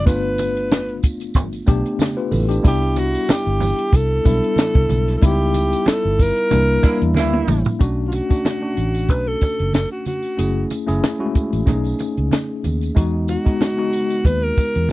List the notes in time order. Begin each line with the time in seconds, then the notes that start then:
0.06 G1 A3 B3 D4 F4 B4, kick, closed hi-hat, tambourine, muted conga
0.38 closed hi-hat, tambourine, muted conga
0.57 closed hi-hat
0.71 snare, closed hi-hat, tambourine, high conga
0.89 closed hi-hat
1.03 F1, kick, closed hi-hat, tambourine
1.20 closed hi-hat, tambourine
1.34 G1, kick, closed hi-hat, tambourine, muted conga, low conga
1.53 closed hi-hat, tambourine
1.66 B1 A3 B3 D4 G4, kick, closed hi-hat, tambourine, muted conga
1.86 closed hi-hat
1.99 snare, closed hi-hat, tambourine, high conga
2.17 F4 B4, closed hi-hat
2.32 A1 E4 A4, open hi-hat, tambourine, high conga
2.49 D4 G4, closed hi-hat, tambourine
2.63 C2 G3 B3 D4 E4, kick, closed hi-hat, tambourine
2.67 G4
2.82 closed hi-hat
2.96 F#4, closed hi-hat, tambourine, muted conga
3.15 closed hi-hat, tambourine
3.29 G4, muted fingered electric bass stroke, snare, closed hi-hat, tambourine, high conga
3.46 G1, closed hi-hat
3.60 open hi-hat, tambourine, low conga
3.78 closed hi-hat
3.93 C2 A4, kick, closed hi-hat, tambourine, muted conga
4.25 B1 G3 B3 D4 E4, kick, closed hi-hat, tambourine, muted conga
4.43 closed hi-hat
4.56 snare, closed hi-hat, tambourine, high conga
4.75 C2, kick
4.89 B1, closed hi-hat, tambourine, high conga
5.08 snare, closed hi-hat
5.17 G3 A4
5.22 C#2 B3 D#4 E4 G4, kick, closed hi-hat, tambourine, muted conga
5.54 closed hi-hat, tambourine, muted conga
5.73 closed hi-hat, tambourine
5.86 A4, muted fingered electric bass stroke, snare, closed hi-hat, tambourine, high conga
6.05 G1
6.19 A#4, kick, open hi-hat, tambourine
6.37 closed hi-hat
6.50 C2 G3 A#3 D4 E4, closed hi-hat, tambourine, muted conga, low conga
6.82 E3 G3 A#3 D4 E4, muted fingered electric bass stroke, kick, closed hi-hat, tambourine, muted conga
7.01 E2, closed hi-hat
7.14 D2 E3 G3 A#3 E4, snare, tambourine, high conga
7.33 high tom
7.47 A1, mid tom, tambourine, high conga
7.65 floor tom, tambourine
7.79 B1 A3 C#4 D4 F#4, kick, closed hi-hat, tambourine, muted conga
8.07 F4
8.12 F#4, closed hi-hat, tambourine, muted conga
8.29 A3 C#4 D4 F#4, muted fingered electric bass stroke, kick, closed hi-hat, tambourine
8.45 snare, closed hi-hat, tambourine, high conga
8.61 A3 C#4 D4 F#4
8.77 A1, closed hi-hat, tambourine
8.95 closed hi-hat, tambourine
9.09 B1 B4, kick, closed hi-hat, tambourine, muted conga
9.28 A4
9.41 kick, closed hi-hat, tambourine, muted conga
9.59 F#1, closed hi-hat
9.73 A4, snare, closed hi-hat, tambourine, high conga
9.92 F#4
10.06 F#4, closed hi-hat, tambourine, high conga
10.23 closed hi-hat, tambourine
10.38 F#1 A3 C#4 E4 G#4, closed hi-hat, tambourine
10.70 closed hi-hat, tambourine, muted conga
10.86 F#1 A3 C#4 E4 G#4, closed hi-hat, tambourine
11.04 snare, closed hi-hat, tambourine, high conga
11.19 G#3 C#4 E4 F#4
11.26 A3
11.35 muted fingered electric bass stroke, kick, closed hi-hat, tambourine
11.53 A1, closed hi-hat, tambourine
11.66 B1 A3 C#4 D#4 G#4, kick, closed hi-hat, tambourine, muted conga, low conga
11.84 closed hi-hat, tambourine
11.99 closed hi-hat, tambourine, muted conga
12.17 C#2, closed hi-hat
12.31 snare, closed hi-hat, tambourine, high conga
12.64 D#2, closed hi-hat, tambourine, high conga
12.81 closed hi-hat, tambourine
12.95 E2 G#3 B3 D#4 F#4, kick, closed hi-hat, tambourine, muted conga
13.28 F#4, closed hi-hat, tambourine, muted conga
13.45 G#3 B3 D#4 F#4, muted fingered electric bass stroke, kick, closed hi-hat
13.61 snare, closed hi-hat, tambourine, high conga
13.77 G#3 B3 D#4 F#4
13.93 closed hi-hat, tambourine
14.10 closed hi-hat, tambourine
14.25 D#2 B4, kick, closed hi-hat, tambourine, muted conga
14.42 A#4, closed hi-hat
14.57 kick, closed hi-hat, tambourine, muted conga
14.75 E2, closed hi-hat
14.89 high conga